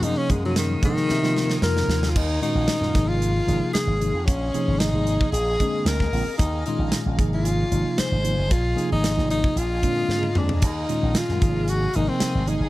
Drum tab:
CC |----------------|x---------------|----------------|----------------|
HH |x-x-x-x---------|--x-x-x-x-x-x-x-|x-x-x-x-x-x-x-o-|x-x-x-x-x-x-x-x-|
SD |----o--ooooooooo|----ooo-----o---|----o-------oo--|----o-------o---|
T1 |----------------|----------------|----------------|----------------|
T2 |----------------|----------------|----------------|----------------|
FT |----------------|----------------|----------------|----------------|
BD |--o---o---------|o-----o---------|o------o--o--o--|o-----o---------|

CC |----------------|x---------------|
HH |x-x-x-x-x-x-----|x-x-x-x-x-x-x-x-|
SD |----oo------o---|----oo------o---|
T1 |-------------o--|----------------|
T2 |--------------o-|----------------|
FT |---------------o|----------------|
BD |o------o--o-----|o-----o---------|